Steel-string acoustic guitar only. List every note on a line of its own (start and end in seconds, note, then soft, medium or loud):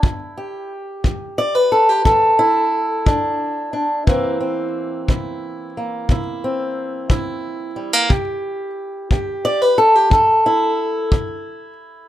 0.00 0.64 E2 medium
0.00 0.71 E4 medium
0.38 1.71 G4 soft
1.04 1.65 E2 medium
1.38 1.55 D5 loud
1.55 2.38 B4 medium
1.72 1.89 A4 medium
1.89 2.05 G4 medium
2.05 2.66 E2 medium
2.05 3.06 A4 medium
2.39 5.08 E4 medium
3.06 3.67 E2 medium
3.06 3.72 D4 soft
3.73 4.03 D4 soft
4.07 4.68 C3 medium
4.07 8.06 E3 medium
4.07 5.77 A#3 soft
4.07 4.40 C4 soft
4.41 6.42 C4 soft
5.09 5.69 C3 medium
5.09 6.11 E4 soft
5.77 7.76 A#3 soft
6.11 6.70 C3 medium
6.11 7.09 E4 soft
6.44 8.07 C4 soft
7.10 7.70 C3 medium
7.10 9.44 E4 soft
7.76 7.93 G3 soft
7.93 8.10 A#3 soft
8.09 8.70 C3 medium
8.09 9.11 G4 medium
9.12 9.72 C3 medium
9.12 9.78 G4 soft
9.45 9.62 D5 loud
9.62 9.78 B4 medium
9.78 9.95 A4 loud
9.95 10.12 G4 medium
10.10 10.71 C3 medium
10.10 11.13 A4 medium
10.46 12.08 E4 medium
11.13 11.73 C3 medium